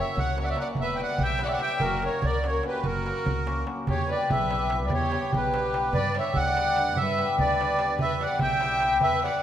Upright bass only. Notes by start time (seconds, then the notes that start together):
0.17 C#2
0.77 E1
1.19 B1
1.81 F#1
2.23 C#2
2.84 F#1
3.26 C#2
3.88 E2
4.31 B1
4.91 E2
5.34 B1
5.93 G2
6.36 D2
6.97 G2
7.39 D2
7.99 E2
8.42 B1
9.02 E2